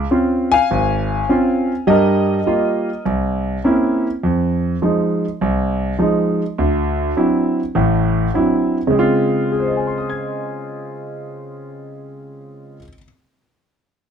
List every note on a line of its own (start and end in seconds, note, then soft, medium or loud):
0.11 0.53 C4 medium
0.11 0.53 C#4 soft
0.11 0.54 F4 medium
0.52 1.84 F5 medium
0.52 1.91 G#5 loud
0.71 1.21 G#1 medium
1.29 1.71 C4 medium
1.29 1.71 C#4 soft
1.29 1.71 F4 medium
1.87 2.38 G2 medium
1.87 2.38 G3 medium
1.87 3.02 A#4 medium
1.87 3.01 D#5 medium
2.46 2.88 G3 soft
2.46 2.89 A#3 soft
2.46 2.89 F4 medium
3.05 3.56 C2 medium
3.64 4.06 A#3 soft
3.64 4.06 C4 soft
3.64 4.06 C#4 soft
3.64 4.07 E4 medium
4.23 4.74 F2 medium
4.82 5.24 F3 soft
4.82 5.24 G#3 soft
4.82 5.24 D#4 medium
5.41 5.92 C2 medium
5.99 6.41 F3 medium
5.99 6.41 G#3 soft
5.99 6.42 D#4 medium
6.58 7.09 D2 medium
7.17 7.59 F#3 medium
7.17 7.59 C4 soft
7.17 7.59 D4 soft
7.17 7.59 E4 medium
7.75 8.27 A1 medium
7.75 8.26 A2 medium
8.34 8.77 F#3 soft
8.34 8.77 C4 soft
8.34 8.77 D4 soft
8.34 8.77 E4 medium
8.87 12.76 C#3 medium
8.87 12.77 G#3 medium
8.95 12.80 C4 medium
8.95 12.82 F4 medium
9.52 12.75 G#4 soft
9.60 12.79 C5 soft
9.68 12.83 D#5 soft
9.77 12.87 G#5 soft
9.87 12.92 C6 soft
9.98 12.98 D#6 soft
10.10 13.03 G#6 soft